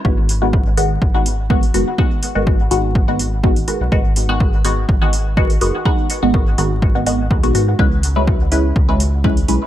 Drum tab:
HH |--o---o---o--oo-|--o---o---o--oo-|--o---o---o--oo-|--o---o---o--oo-|
BD |o---o---o---o---|o---o---o---o---|o---o---o---o---|o---o---o---o---|

HH |--o---o---o--oo-|
BD |o---o---o---o---|